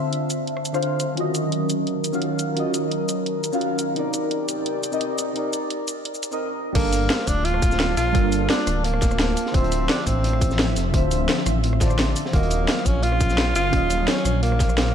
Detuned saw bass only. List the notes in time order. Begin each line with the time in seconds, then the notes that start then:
6.75 G1
7.28 D1
7.98 A#1
8.15 G1
8.67 D1
9.54 D1
10.07 A1
10.77 F1
10.94 D1
11.46 A1
12.33 D#1
12.86 A#1
13.55 F#1
13.73 D#1
14.25 A#1